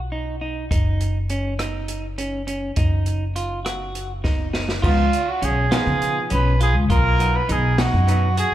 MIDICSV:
0, 0, Header, 1, 6, 480
1, 0, Start_track
1, 0, Tempo, 589391
1, 576, Time_signature, 7, 3, 24, 8
1, 6957, End_track
2, 0, Start_track
2, 0, Title_t, "Trumpet"
2, 0, Program_c, 0, 56
2, 3942, Note_on_c, 0, 65, 75
2, 4307, Note_on_c, 0, 66, 67
2, 4319, Note_off_c, 0, 65, 0
2, 4435, Note_on_c, 0, 68, 71
2, 4447, Note_off_c, 0, 66, 0
2, 4667, Note_off_c, 0, 68, 0
2, 4679, Note_on_c, 0, 68, 71
2, 5115, Note_off_c, 0, 68, 0
2, 5152, Note_on_c, 0, 71, 82
2, 5368, Note_off_c, 0, 71, 0
2, 5396, Note_on_c, 0, 68, 77
2, 5499, Note_off_c, 0, 68, 0
2, 5629, Note_on_c, 0, 70, 91
2, 5992, Note_on_c, 0, 71, 76
2, 6004, Note_off_c, 0, 70, 0
2, 6122, Note_on_c, 0, 68, 77
2, 6135, Note_off_c, 0, 71, 0
2, 6346, Note_on_c, 0, 66, 78
2, 6359, Note_off_c, 0, 68, 0
2, 6820, Note_off_c, 0, 66, 0
2, 6832, Note_on_c, 0, 68, 83
2, 6957, Note_off_c, 0, 68, 0
2, 6957, End_track
3, 0, Start_track
3, 0, Title_t, "Clean electric guitar"
3, 0, Program_c, 1, 27
3, 97, Note_on_c, 1, 63, 60
3, 287, Note_off_c, 1, 63, 0
3, 337, Note_on_c, 1, 63, 58
3, 527, Note_off_c, 1, 63, 0
3, 577, Note_on_c, 1, 63, 67
3, 957, Note_off_c, 1, 63, 0
3, 1061, Note_on_c, 1, 61, 57
3, 1250, Note_off_c, 1, 61, 0
3, 1294, Note_on_c, 1, 63, 59
3, 1676, Note_off_c, 1, 63, 0
3, 1776, Note_on_c, 1, 61, 61
3, 1967, Note_off_c, 1, 61, 0
3, 2012, Note_on_c, 1, 61, 58
3, 2205, Note_off_c, 1, 61, 0
3, 2255, Note_on_c, 1, 63, 71
3, 2637, Note_off_c, 1, 63, 0
3, 2734, Note_on_c, 1, 65, 56
3, 2926, Note_off_c, 1, 65, 0
3, 2970, Note_on_c, 1, 66, 57
3, 3354, Note_off_c, 1, 66, 0
3, 3452, Note_on_c, 1, 63, 62
3, 3645, Note_off_c, 1, 63, 0
3, 3692, Note_on_c, 1, 63, 54
3, 3885, Note_off_c, 1, 63, 0
3, 3928, Note_on_c, 1, 65, 79
3, 4312, Note_off_c, 1, 65, 0
3, 4412, Note_on_c, 1, 61, 65
3, 4604, Note_off_c, 1, 61, 0
3, 4652, Note_on_c, 1, 65, 71
3, 5034, Note_off_c, 1, 65, 0
3, 5134, Note_on_c, 1, 61, 73
3, 5325, Note_off_c, 1, 61, 0
3, 5379, Note_on_c, 1, 65, 69
3, 5568, Note_off_c, 1, 65, 0
3, 5617, Note_on_c, 1, 65, 85
3, 5997, Note_off_c, 1, 65, 0
3, 6098, Note_on_c, 1, 63, 71
3, 6287, Note_off_c, 1, 63, 0
3, 6344, Note_on_c, 1, 63, 69
3, 6720, Note_off_c, 1, 63, 0
3, 6823, Note_on_c, 1, 66, 75
3, 6957, Note_off_c, 1, 66, 0
3, 6957, End_track
4, 0, Start_track
4, 0, Title_t, "Hollow-body jazz guitar"
4, 0, Program_c, 2, 26
4, 3938, Note_on_c, 2, 53, 54
4, 3942, Note_on_c, 2, 59, 48
4, 3950, Note_on_c, 2, 63, 60
4, 4106, Note_off_c, 2, 53, 0
4, 4108, Note_off_c, 2, 59, 0
4, 4112, Note_off_c, 2, 63, 0
4, 4655, Note_on_c, 2, 53, 54
4, 4662, Note_on_c, 2, 59, 49
4, 4667, Note_on_c, 2, 63, 63
4, 5328, Note_off_c, 2, 53, 0
4, 5331, Note_off_c, 2, 59, 0
4, 5334, Note_off_c, 2, 63, 0
4, 5856, Note_on_c, 2, 54, 52
4, 5863, Note_on_c, 2, 59, 44
4, 5872, Note_on_c, 2, 63, 60
4, 6024, Note_off_c, 2, 54, 0
4, 6026, Note_off_c, 2, 59, 0
4, 6032, Note_off_c, 2, 63, 0
4, 6575, Note_on_c, 2, 54, 57
4, 6580, Note_on_c, 2, 59, 48
4, 6589, Note_on_c, 2, 63, 64
4, 6743, Note_off_c, 2, 54, 0
4, 6744, Note_off_c, 2, 59, 0
4, 6750, Note_off_c, 2, 63, 0
4, 6957, End_track
5, 0, Start_track
5, 0, Title_t, "Upright bass"
5, 0, Program_c, 3, 32
5, 0, Note_on_c, 3, 35, 57
5, 546, Note_off_c, 3, 35, 0
5, 581, Note_on_c, 3, 30, 57
5, 2229, Note_off_c, 3, 30, 0
5, 2255, Note_on_c, 3, 30, 59
5, 3904, Note_off_c, 3, 30, 0
5, 3937, Note_on_c, 3, 37, 89
5, 4131, Note_off_c, 3, 37, 0
5, 4417, Note_on_c, 3, 35, 76
5, 4610, Note_off_c, 3, 35, 0
5, 4780, Note_on_c, 3, 49, 76
5, 4972, Note_off_c, 3, 49, 0
5, 5143, Note_on_c, 3, 35, 90
5, 5500, Note_off_c, 3, 35, 0
5, 5500, Note_on_c, 3, 37, 83
5, 5595, Note_off_c, 3, 37, 0
5, 5619, Note_on_c, 3, 35, 80
5, 6003, Note_off_c, 3, 35, 0
5, 6103, Note_on_c, 3, 35, 85
5, 6389, Note_off_c, 3, 35, 0
5, 6466, Note_on_c, 3, 42, 77
5, 6847, Note_off_c, 3, 42, 0
5, 6957, End_track
6, 0, Start_track
6, 0, Title_t, "Drums"
6, 578, Note_on_c, 9, 36, 85
6, 583, Note_on_c, 9, 42, 63
6, 660, Note_off_c, 9, 36, 0
6, 665, Note_off_c, 9, 42, 0
6, 820, Note_on_c, 9, 42, 43
6, 901, Note_off_c, 9, 42, 0
6, 1055, Note_on_c, 9, 42, 43
6, 1136, Note_off_c, 9, 42, 0
6, 1297, Note_on_c, 9, 37, 78
6, 1297, Note_on_c, 9, 42, 62
6, 1378, Note_off_c, 9, 37, 0
6, 1378, Note_off_c, 9, 42, 0
6, 1534, Note_on_c, 9, 42, 46
6, 1615, Note_off_c, 9, 42, 0
6, 1779, Note_on_c, 9, 42, 57
6, 1860, Note_off_c, 9, 42, 0
6, 2017, Note_on_c, 9, 42, 44
6, 2099, Note_off_c, 9, 42, 0
6, 2250, Note_on_c, 9, 42, 63
6, 2256, Note_on_c, 9, 36, 90
6, 2332, Note_off_c, 9, 42, 0
6, 2337, Note_off_c, 9, 36, 0
6, 2492, Note_on_c, 9, 42, 44
6, 2574, Note_off_c, 9, 42, 0
6, 2737, Note_on_c, 9, 42, 44
6, 2818, Note_off_c, 9, 42, 0
6, 2980, Note_on_c, 9, 37, 83
6, 2980, Note_on_c, 9, 42, 59
6, 3061, Note_off_c, 9, 37, 0
6, 3061, Note_off_c, 9, 42, 0
6, 3219, Note_on_c, 9, 42, 46
6, 3300, Note_off_c, 9, 42, 0
6, 3455, Note_on_c, 9, 38, 40
6, 3457, Note_on_c, 9, 36, 78
6, 3536, Note_off_c, 9, 38, 0
6, 3539, Note_off_c, 9, 36, 0
6, 3695, Note_on_c, 9, 38, 54
6, 3776, Note_off_c, 9, 38, 0
6, 3818, Note_on_c, 9, 38, 56
6, 3899, Note_off_c, 9, 38, 0
6, 3938, Note_on_c, 9, 36, 108
6, 3942, Note_on_c, 9, 49, 92
6, 4020, Note_off_c, 9, 36, 0
6, 4023, Note_off_c, 9, 49, 0
6, 4180, Note_on_c, 9, 42, 52
6, 4261, Note_off_c, 9, 42, 0
6, 4418, Note_on_c, 9, 42, 54
6, 4500, Note_off_c, 9, 42, 0
6, 4657, Note_on_c, 9, 38, 95
6, 4657, Note_on_c, 9, 42, 69
6, 4739, Note_off_c, 9, 38, 0
6, 4739, Note_off_c, 9, 42, 0
6, 4901, Note_on_c, 9, 42, 51
6, 4982, Note_off_c, 9, 42, 0
6, 5133, Note_on_c, 9, 42, 65
6, 5214, Note_off_c, 9, 42, 0
6, 5380, Note_on_c, 9, 42, 50
6, 5462, Note_off_c, 9, 42, 0
6, 5619, Note_on_c, 9, 36, 109
6, 5620, Note_on_c, 9, 42, 72
6, 5700, Note_off_c, 9, 36, 0
6, 5701, Note_off_c, 9, 42, 0
6, 5864, Note_on_c, 9, 42, 51
6, 5946, Note_off_c, 9, 42, 0
6, 6102, Note_on_c, 9, 42, 55
6, 6183, Note_off_c, 9, 42, 0
6, 6339, Note_on_c, 9, 38, 97
6, 6339, Note_on_c, 9, 42, 71
6, 6421, Note_off_c, 9, 38, 0
6, 6421, Note_off_c, 9, 42, 0
6, 6584, Note_on_c, 9, 42, 56
6, 6665, Note_off_c, 9, 42, 0
6, 6820, Note_on_c, 9, 42, 74
6, 6902, Note_off_c, 9, 42, 0
6, 6957, End_track
0, 0, End_of_file